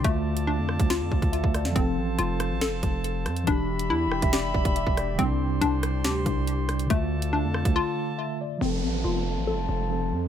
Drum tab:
HH |x--x---xx--xx-x-|x---x-x-x-x-x-xx|x--x---xx--xx-x-|x---x-x-x-x-x-xx|
SD |------r-o-----ro|------r-o-----r-|------r-o-----r-|------r-o-----r-|
BD |o------o--oo-o--|o---------o-----|o------o--oo-o--|o---------o-----|

HH |x--x---x--------|----------------|
SD |------r---------|----------------|
BD |o------o--------|----------------|